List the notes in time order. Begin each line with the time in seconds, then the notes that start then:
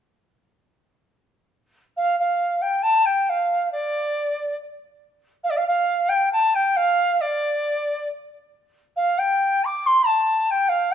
1.96 F5
2.19 F5
2.61 G5
2.82 A5
3.05 G5
3.29 F5
3.72 D5
5.43 F5
5.49 D5
5.56 F5
5.67 F5
6.08 G5
6.32 A5
6.54 G5
6.76 F5
7.20 D5
8.96 F5
9.18 G5
9.64 D6
9.86 C6
10.06 A5
10.50 G5
10.68 F5
10.91 G5